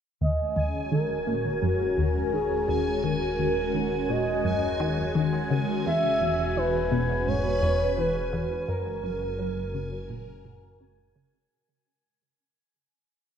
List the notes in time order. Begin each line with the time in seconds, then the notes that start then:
0.21 D#1 D#2 G#3 D#5 G#5
0.38 C#4
0.56 D#2
0.71 F#4
0.92 D#3 A#4
1.12 A#4
1.27 A#2
1.62 F#2 F#4
1.98 D#2
2.32 D#3 G#4
2.68 D#2
3.03 D#2 A#4
3.39 D#2
3.74 D#3
4.09 A#2 D#5
4.44 F#2
4.80 D#3
5.15 D#3
5.51 C#3
5.86 E1 E2 E5
6.21 E2
6.57 E3 B4
6.92 B2
7.13 B4
7.27 G#2 C#5
7.62 E2
7.98 E3 B4
8.33 E2
8.68 F#1 F#2 A#4
9.04 F#2
9.39 F#3
9.69 A#4
9.75 C#3
10.10 A#2
10.45 A#2
10.80 C#3
11.16 C#3